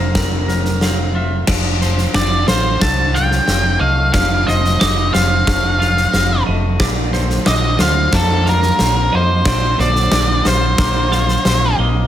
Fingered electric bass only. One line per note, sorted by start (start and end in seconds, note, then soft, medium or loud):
0.00 1.45 F1 medium
1.48 2.06 F1 medium
2.15 2.44 F1 medium
2.48 2.77 A1 medium
2.81 3.39 C2 medium
3.48 3.77 F1 medium
3.81 4.10 C2 medium
4.15 4.43 F1 medium
4.48 4.76 F1 medium
4.82 5.10 F1 medium
5.14 5.43 F1 medium
5.47 6.05 F1 medium
6.14 6.43 F1 medium
6.48 6.76 F1 medium
6.80 7.38 A#1 medium
7.47 7.76 A#1 medium
7.80 8.09 D2 medium
8.13 8.70 F2 medium
8.80 9.09 A#1 medium
9.14 9.42 F2 medium
9.46 9.75 A#1 medium
9.79 10.08 A#1 medium
10.12 10.41 A#1 medium
10.46 10.74 A#1 medium
10.79 11.36 A#1 medium
11.45 11.74 A#1 medium
11.78 12.07 A#1 medium